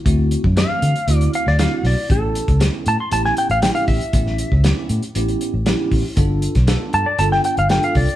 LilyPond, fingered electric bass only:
\new Staff \with { instrumentName = "Fingered electric bass" } { \clef bass \time 4/4 \key a \dorian \tempo 4 = 118 d,8. fis,8 r16 d16 r16 d,8 r16 d,8 r16 b,,16 r16 | a,,8. cis,8 r16 a,16 r16 a,,8 r16 a,,8 r16 a,,16 r16 | a,,8. cis,8 r16 a,16 r16 a,,8 r16 a,,8 r16 a,,16 r16 | g,,8. b,,8 r16 g,16 r16 g,,8 r16 g,,8 r16 c,16 r16 | }